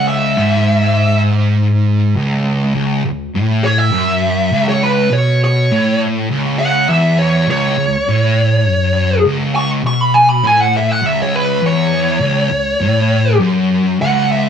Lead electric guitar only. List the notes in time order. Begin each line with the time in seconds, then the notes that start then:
0.08 E5
3.64 C#5
3.78 E5
4.69 C#5
4.83 B4
5.13 C#5
5.44 C#5
6.59 F#5
6.89 E5
7.18 C#5
7.51 C#5
9.56 C#6
9.87 C#6
10.01 B5
10.14 G#5
10.29 B5
10.47 G#5
10.60 F#5
10.77 E5
10.92 F#5
11.06 E5
11.22 C#5
11.36 B4
11.66 C#5
14.02 F#5
14.32 E5